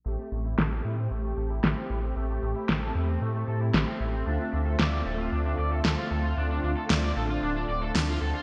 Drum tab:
SD |--o---o-|--o---o-|--o---o-|--o---o-|